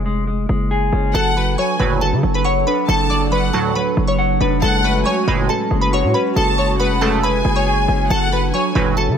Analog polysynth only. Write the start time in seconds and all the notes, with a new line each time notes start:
1.80 D2 A2 F#3
3.54 D2 A2 F#3
5.27 C#2 A2 G#3
7.01 F#2 C#3 A3
8.75 D2 A2 F#3